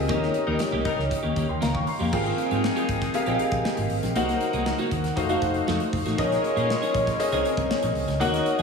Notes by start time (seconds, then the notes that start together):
Already playing: C4 F4 G4 G#4 A#4 D#5
0.08 D#2 A#3 C#4 D#4 G4 A#4 D#5, kick, closed hi-hat
0.23 snare
0.34 muted clean electric guitar stroke, closed hi-hat
0.47 D#2 G3 A#3 C#4 D#4 A#4
0.59 muted clean electric guitar stroke, snare, closed hi-hat
0.72 C2 A#3 C#4 G4
0.84 G3 D#4 A#4, muted clean electric guitar stroke, kick, closed hi-hat
0.97 C#2, muted clean electric guitar stroke, snare
1.11 muted clean electric guitar stroke, kick, closed hi-hat
1.23 D#2 A#3 C#4 G4
1.35 D#2 A#3 C#4 G4, kick, closed hi-hat
1.49 D#2 G5 C6, muted clean electric guitar stroke
1.61 C#2 A#3 C#4 A#4 F5 A#5, snare, closed hi-hat
1.74 D#2 G5 C#6, muted clean electric guitar stroke, kick
1.87 G5 C6, muted clean electric guitar stroke, open hi-hat
1.99 F2 A#3 C#4 G4 F5 A#5
2.12 G#1 F3 C4 D#4 F4 G4 G#4 A#4 F5 G5, kick, crash
2.26 closed hi-hat
2.38 muted clean electric guitar stroke, closed hi-hat
2.51 G#2 C4 F4 G4, closed hi-hat
2.64 snare
2.76 C4 F4 G4, closed hi-hat
2.89 G#1, muted clean electric guitar stroke, kick, closed hi-hat
3.01 muted clean electric guitar stroke, kick, snare, closed hi-hat
3.14 C4 G4 G#4 A#4 F5, muted clean electric guitar stroke, closed hi-hat
3.26 A#1 C4 F4 G4 G#4 A#4 D#5 G5, closed hi-hat
3.34 F5
3.39 muted clean electric guitar stroke, closed hi-hat
3.51 A#1, muted clean electric guitar stroke, kick, closed hi-hat
3.65 muted clean electric guitar stroke, snare
3.77 G#1, muted clean electric guitar stroke, closed hi-hat
3.90 G#1, open hi-hat
4.03 A#1, muted clean electric guitar stroke, snare, closed hi-hat
4.15 C2 F#3 A#3 D#4 F#4 A#4 C5 F#5, closed hi-hat
4.29 snare, closed hi-hat
4.41 muted clean electric guitar stroke, closed hi-hat
4.53 C2 A#3 D#4 G#4, closed hi-hat
4.66 muted clean electric guitar stroke, snare
4.78 A#3 D#4 F#4, closed hi-hat
4.91 D#2, muted clean electric guitar stroke, kick, closed hi-hat
5.04 muted clean electric guitar stroke, snare, closed hi-hat
5.16 F1 A3 D#4 F#4 A4 C5 F5, muted clean electric guitar stroke, kick, closed hi-hat
5.29 A3 D#4 F#4 A4 C5 F5, closed hi-hat
5.42 F1, muted clean electric guitar stroke, kick, closed hi-hat
5.54 muted clean electric guitar stroke, closed hi-hat
5.67 F2 A3 D#4 A4, snare
5.80 muted clean electric guitar stroke, closed hi-hat
5.93 F1, muted clean electric guitar stroke, kick, open hi-hat
6.06 A1 A3 D#4 F#4, snare, closed hi-hat
6.18 A#1 G#3 C#4 D#4 F4 G#4 A#4 C#5 D#5, kick, closed hi-hat
6.32 snare, closed hi-hat
6.44 muted clean electric guitar stroke, closed hi-hat
6.56 A#2 C#4 D#4 G#4, closed hi-hat
6.70 muted clean electric guitar stroke, snare
6.82 C#4 D#4 G#4, closed hi-hat
6.95 A#1, muted clean electric guitar stroke, kick, closed hi-hat
7.07 muted clean electric guitar stroke, kick, snare, closed hi-hat
7.18 C#4 G#4 A#4 C5 D#5, muted clean electric guitar stroke, closed hi-hat
7.32 C2 C4 C#4 D#4 G#4 A#4 C#5 D#5, closed hi-hat
7.38 C#4
7.45 muted clean electric guitar stroke, closed hi-hat
7.57 C2, muted clean electric guitar stroke, kick, closed hi-hat
7.70 muted clean electric guitar stroke, snare
7.82 A#1, muted clean electric guitar stroke, closed hi-hat
7.95 C2, open hi-hat
8.08 C#2, muted clean electric guitar stroke, snare, closed hi-hat
8.20 D#2 A#3 C#4 D#4 F#4 A#4 C#5 D#5 F#5, closed hi-hat
8.34 snare, closed hi-hat
8.46 muted clean electric guitar stroke, closed hi-hat
8.59 D#2 G#4, closed hi-hat